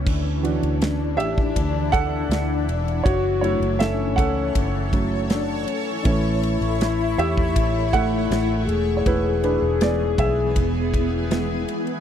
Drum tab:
CC |x---------------|----------------|----------------|----------------|
RD |--xxx-x-x-x-x-xx|x-xxx-x-x-x-x-x-|x-xxx-x-x-x-x-x-|x-x-x-x-x-x-x-xx|
SD |----o-------o---|----o-------o---|----o-------o---|----o-------o---|
BD |o------oo-o-----|o-----o-o-o-----|o------oo-o-----|o-----o-o-o-----|